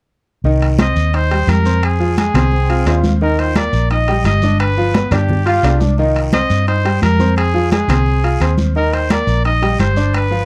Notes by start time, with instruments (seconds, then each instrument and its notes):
0.44 fingered electric bass C2, grand piano D#3 D#4 D#5, high conga, long guiro
0.62 high conga, high timbale
0.79 grand piano C4 C5 C6, trumpet D#5, high conga, high timbale, short guiro, claves
0.96 fingered electric bass D#2, short guiro
1.13 grand piano D#4 D#5 D#6, trumpet C5, high conga, high timbale, long guiro
1.31 grand piano G3 G4 G5, high conga, high timbale
1.47 fingered electric bass F2, trumpet A#4, high conga, high timbale, short guiro, claves
1.65 grand piano C4 C5 C6, short guiro
1.83 trumpet G#4, high conga, high timbale, long guiro, claves
2.00 grand piano F3 F4 F5, high conga
2.17 grand piano G#3 G#4 G#5, trumpet G#4, high conga, high timbale, short guiro
2.34 fingered electric bass C2, grand piano C4 C5 C6, high conga, low conga, high timbale, short guiro, claves
2.52 trombone section C4, high conga, long guiro
2.69 grand piano F4 F5 F6, high conga, high timbale
2.86 fingered electric bass D#2, grand piano C4 C5 C6, trombone section F4, high conga, high timbale, low timbale, short guiro, claves
3.04 high conga, short guiro
3.21 grand piano D#3 D#4 D#5, trumpet A#4, high conga, long guiro
3.38 trumpet C5, high conga, high timbale
3.55 grand piano A#3 A#4 A#5, trumpet D5, high conga, high timbale, short guiro, claves
3.73 fingered electric bass A#1, high conga, short guiro
3.90 grand piano D#4 D#5 D#6, trumpet D#5, high conga, high timbale, long guiro
4.08 grand piano G3 G4 G5, high conga, high timbale
4.24 fingered electric bass G1, trumpet D#5, high conga, high timbale, short guiro, claves
4.42 grand piano D4 D5 D6, high conga, short guiro
4.59 trumpet B4, high timbale, long guiro, claves
4.77 grand piano F3 F4 F5, high conga
4.94 grand piano B3 B4 B5, high conga, high timbale, short guiro
5.11 fingered electric bass G2, grand piano D4 D5 D6, trumpet G4, high conga, low conga, high timbale, short guiro, claves
5.28 high conga, low conga, long guiro
5.46 trombone section F4, grand piano F4 F5 F6, high conga, high timbale
5.63 fingered electric bass C2, grand piano D4 D5 D6, high conga, high timbale, low timbale, short guiro, claves
5.80 trombone section D4, high conga, short guiro
5.98 grand piano D#3 D#4 D#5, trombone section D#4, high conga, long guiro
6.16 high conga, high timbale
6.33 grand piano C4 C5 C6, trumpet D#5, high conga, high timbale, short guiro, claves
6.50 fingered electric bass G2, high conga, short guiro
6.67 grand piano D#4 D#5 D#6, trumpet C5, high conga, high timbale, long guiro
6.85 grand piano G3 G4 G5, high conga, high timbale
7.02 fingered electric bass F2, trumpet A#4, high conga, high timbale, short guiro, claves
7.19 grand piano C4 C5 C6, high conga, short guiro
7.36 trumpet G#4, high conga, high timbale, long guiro, claves
7.54 grand piano F3 F4 F5, high conga
7.71 grand piano G#3 G#4 G#5, trumpet G#4, high conga, high timbale, short guiro
7.88 fingered electric bass C2, grand piano C4 C5 C6, high conga, low conga, high timbale, short guiro, claves
8.06 high conga, long guiro
8.24 grand piano F4 F5 F6, high conga, high timbale
8.40 fingered electric bass D#2, grand piano C4 C5 C6, high conga, high timbale, short guiro, claves
8.58 high conga, short guiro
8.75 grand piano D#3 D#4 D#5, trumpet A#4, high conga, long guiro
8.93 trumpet C5, high conga, high timbale
9.10 grand piano A#3 A#4 A#5, trumpet D5, high conga, high timbale, short guiro, claves
9.27 fingered electric bass A#1, high conga, short guiro
9.44 grand piano D#4 D#5 D#6, trumpet D#5, high conga, high timbale, long guiro
9.62 grand piano G3 G4 G5, high conga, high timbale
9.79 fingered electric bass G1, trumpet C5, high conga, high timbale, short guiro, claves
9.96 grand piano D4 D5 D6, short guiro
10.14 trumpet B4, high conga, high timbale, long guiro, claves
10.31 grand piano F3 F4 F5, high conga